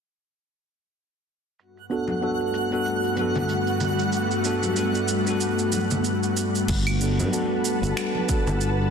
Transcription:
1.59 ambient pad G2 G3 A3 B3 F#4, synth texture F#5, shaker
1.77 shaker
1.90 tine electric piano B3 D4 F#4 A4, shaker
2.08 high conga, shaker
2.21 tine electric piano B3 D4 F#4 A4, shaker
2.40 shaker
2.54 shaker
2.71 tine electric piano B3 D4 F#4 A4, shaker
2.86 shaker
3.04 shaker
3.16 tine electric piano B3 D4 F#4, high conga, shaker
3.21 tine electric piano A4
3.35 low conga, shaker
3.49 shaker
3.67 shaker
3.80 low conga, shaker
3.99 shaker
4.12 shaker
4.31 shaker
4.44 tine electric piano B3 D4 F#4 A4, shaker
4.63 high conga, shaker
4.76 tine electric piano B3 D4 F#4 A4, shaker
4.95 shaker
5.08 shaker
5.25 tine electric piano B3 D4 F#4, shaker
5.31 tine electric piano A4
5.40 shaker
5.59 shaker
5.72 high conga, shaker
5.91 low conga, shaker
6.04 shaker
6.23 shaker
6.37 shaker
6.55 shaker
6.68 fretless electric bass G1, ambient pad G3 B4 F#5 A5, kick, crash, shaker
6.87 claves, shaker
7.00 tine electric piano B3 D4 F#4 A4, shaker
7.20 fretless electric bass G2, high conga, shaker
7.31 tine electric piano B3 D4 F#4 A4, shaker
7.65 shaker
7.82 fretless electric bass G1, tine electric piano B3 D4 F#4 A4, shaker
7.97 finger snap, shaker
8.15 high conga
8.27 tine electric piano B3 D4 F#4, kick, shaker
8.32 tine electric piano A4
8.47 fretless electric bass G1, low conga, shaker
8.61 shaker

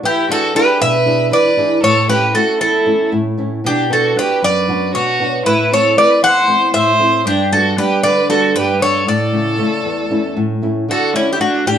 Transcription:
0.03 nylon-string guitar E3, violin E4, bouzouki G4
0.29 nylon-string guitar D4 E4 G#4, violin F#4, bouzouki A4
0.55 nylon-string guitar D4 E4 G#4, violin G4, bouzouki B4
0.81 nylon-string guitar B2, violin B4, bouzouki E5
1.06 nylon-string guitar D4 E4 G#4
1.31 nylon-string guitar E3, violin B4, bouzouki D5
1.57 nylon-string guitar D4 E4 G#4
1.83 nylon-string guitar A2, violin A4, bouzouki C#5
2.09 nylon-string guitar A3 C#4 E4, violin G4, bouzouki B4
2.34 nylon-string guitar A3 C#4 E4, violin F#4, bouzouki A4
2.60 nylon-string guitar E2, violin E4, bouzouki A4
2.86 nylon-string guitar A3 C#4 E4
3.12 nylon-string guitar A2
3.38 nylon-string guitar A3 C#4 E4
3.64 nylon-string guitar B2, violin D4, bouzouki G4
3.90 nylon-string guitar B3 D4 F#4, violin F#4, bouzouki A4
4.15 nylon-string guitar B3 D4 F#4, violin G4, bouzouki B4
4.42 nylon-string guitar F#2, violin B4, bouzouki D5
4.68 nylon-string guitar B3 D4 F#4
4.94 nylon-string guitar B2, violin F#4, bouzouki C#5
5.20 nylon-string guitar B3 D4 F#4
5.46 nylon-string guitar A2, violin E4, bouzouki B4
5.71 nylon-string guitar A3 C4 E4, violin A4, bouzouki C#5
5.96 nylon-string guitar A3 C4 E4, violin B4, bouzouki D5
6.22 nylon-string guitar E2, violin C5, bouzouki F#5
6.48 nylon-string guitar A3 C4 E4
6.74 nylon-string guitar A2, violin C5, bouzouki E5
6.99 nylon-string guitar A3 C4 E4
7.26 nylon-string guitar G2, violin D4, bouzouki G4
7.52 nylon-string guitar G3 B3 D4, violin F#4, bouzouki A4
7.77 nylon-string guitar G3 B3 D4, violin G4, bouzouki B4
8.03 nylon-string guitar D3, violin B4, bouzouki D5
8.29 nylon-string guitar G3 B3 D4, violin F#4, bouzouki A4
8.55 nylon-string guitar G2, violin G4, bouzouki B4
8.81 nylon-string guitar G3 B3 D4, violin A4, bouzouki C#5
9.07 nylon-string guitar A2, violin A4, bouzouki D5
9.33 nylon-string guitar C#3 A3 E4
9.58 nylon-string guitar C#3 A3 E4
9.85 nylon-string guitar E2
10.10 nylon-string guitar A3 C#4 E4
10.37 nylon-string guitar A2
10.62 nylon-string guitar A3 C#4 E4
10.88 nylon-string guitar D3, violin F#4, bouzouki A4
11.13 nylon-string guitar A3 D4 F#4, violin C#4, bouzouki E4
11.33 violin E4, bouzouki G4
11.40 nylon-string guitar A3 D4 F#4, violin D4, bouzouki F#4
11.66 nylon-string guitar A2, violin D4, bouzouki G4

